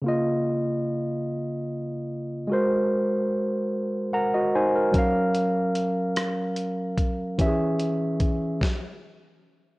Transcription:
<<
  \new Staff \with { instrumentName = "Tine electric piano" } { \time 6/8 \key des \major \tempo 4. = 49 << { r2. | r2 <bes' ges'' bes''>16 <ges' ees''>16 <ees' c'' aes''>16 bes'16~ | bes'16 r2 r8. | r2. | } \\ { <des bes f' ees''>2. | <aes ges' bes' c''>2. | <ges des' bes' f''>2. | <e cis' g' gis' e''>4. r4. | } >> }
  \new DrumStaff \with { instrumentName = "Drums" } \drummode { \time 6/8 r4. r4. | r4. r4. | <hh bd>8 hh8 hh8 <hh ss>8 hh8 <hh bd>8 | <hh bd>8 hh8 <hh bd>8 <bd sn>4. | }
>>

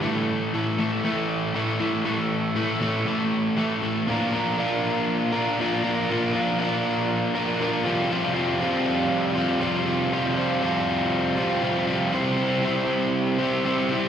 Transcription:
\new Staff \with { instrumentName = "Overdriven electric guitar" } { \time 4/4 \key bes \lydian \tempo 4 = 119 <a, e a>4 <a, e a>8 <a, e a>8 <a, e a>4 <a, e a>8 <a, e a>8 | <a, e a>4 <a, e a>8 <a, e a>8 <a, e a>4 <a, e a>8 <a, e a>8 | <bes, f bes d' f' bes'>8 <bes d' f' bes'>8 <bes d' f' bes'>4. <bes d' f' bes'>8 <bes, f bes d' f' bes'>8 <bes d' f' bes'>8 | <bes, f bes d' f' bes'>8 <bes d' f' bes'>8 <bes d' f' bes'>4. <bes d' f' bes'>8 <bes, f bes d' f' bes'>8 <f, c f g c' f'>8 |
<f, c f g c' f'>8 <f g c' f'>8 <f g c' f'>4. <f g c' f'>8 <f, c f g c' f'>8 <f g c' f'>8 | <f, c f g c' f'>8 <f g c' f'>8 <f g c' f'>4. <f g c' f'>8 <f, c f g c' f'>8 <f g c' f'>8 | <c g c' e' g' c''>8 <c' e' g' c''>8 <c' e' g' c''>4. <c' e' g' c''>8 <c g c' e' g' c''>8 <c' e' g' c''>8 | }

